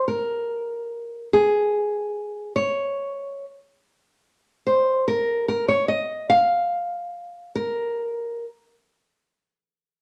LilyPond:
\new Staff \with { instrumentName = "Nylon-string guitar" } { \time 6/8 \key bes \minor \tempo 4. = 48 bes'4. aes'4. | des''4 r4. c''8 | bes'8 bes'16 des''16 ees''8 f''4. | bes'4 r2 | }